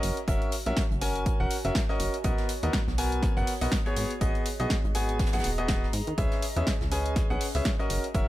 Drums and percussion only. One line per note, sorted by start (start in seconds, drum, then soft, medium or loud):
0.03 closed hi-hat medium
0.03 open hi-hat loud
0.17 closed hi-hat medium
0.28 kick loud
0.28 closed hi-hat medium
0.42 closed hi-hat soft
0.52 closed hi-hat medium
0.52 open hi-hat loud
0.66 closed hi-hat medium
0.77 kick loud
0.77 snare loud
0.77 closed hi-hat medium
0.91 closed hi-hat soft
1.01 closed hi-hat medium
1.01 open hi-hat loud
1.16 closed hi-hat medium
1.26 kick loud
1.26 closed hi-hat medium
1.50 closed hi-hat medium
1.50 open hi-hat loud
1.65 closed hi-hat medium
1.75 kick loud
1.75 snare loud
1.75 closed hi-hat medium
1.89 snare soft
2.00 closed hi-hat medium
2.00 open hi-hat loud
2.14 closed hi-hat medium
2.24 kick loud
2.24 closed hi-hat medium
2.38 snare soft
2.38 closed hi-hat soft
2.49 closed hi-hat medium
2.49 open hi-hat loud
2.63 closed hi-hat medium
2.73 kick loud
2.73 snare loud
2.73 closed hi-hat medium
2.88 snare soft
2.98 closed hi-hat medium
2.98 open hi-hat loud
3.12 closed hi-hat medium
3.22 kick loud
3.22 snare medium
3.22 closed hi-hat medium
3.37 closed hi-hat soft
3.47 open hi-hat loud
3.47 open hi-hat medium
3.61 closed hi-hat soft
3.61 open hi-hat medium
3.72 kick loud
3.72 snare loud
3.72 closed hi-hat medium
3.86 closed hi-hat soft
3.96 closed hi-hat medium
3.96 open hi-hat loud
4.11 closed hi-hat medium
4.21 kick loud
4.21 closed hi-hat medium
4.35 closed hi-hat soft
4.46 closed hi-hat medium
4.46 open hi-hat loud
4.60 closed hi-hat soft
4.70 kick loud
4.70 snare loud
4.70 closed hi-hat medium
4.84 closed hi-hat soft
4.95 closed hi-hat medium
4.95 open hi-hat loud
5.09 closed hi-hat soft
5.19 kick loud
5.19 snare medium
5.19 closed hi-hat medium
5.26 snare medium
5.26 closed hi-hat medium
5.33 snare medium
5.33 closed hi-hat soft
5.33 closed hi-hat medium
5.39 snare medium
5.39 closed hi-hat medium
5.44 closed hi-hat medium
5.44 open hi-hat loud
5.58 closed hi-hat soft
5.68 kick loud
5.68 snare loud
5.68 closed hi-hat medium
5.84 snare soft
5.93 closed hi-hat medium
5.93 open hi-hat loud
6.07 closed hi-hat soft
6.18 kick loud
6.18 closed hi-hat medium
6.32 snare soft
6.32 closed hi-hat soft
6.42 closed hi-hat medium
6.42 open hi-hat loud
6.57 closed hi-hat soft
6.67 kick loud
6.67 snare loud
6.67 closed hi-hat medium
6.81 snare soft
6.92 closed hi-hat medium
6.92 open hi-hat loud
7.06 closed hi-hat medium
7.16 kick loud
7.16 snare medium
7.16 closed hi-hat medium
7.30 closed hi-hat soft
7.41 open hi-hat loud
7.41 open hi-hat medium
7.54 closed hi-hat soft
7.54 open hi-hat medium
7.65 kick loud
7.65 snare loud
7.65 closed hi-hat medium
7.79 closed hi-hat soft
7.90 closed hi-hat medium
7.90 open hi-hat loud
8.04 closed hi-hat soft
8.14 kick loud
8.14 closed hi-hat medium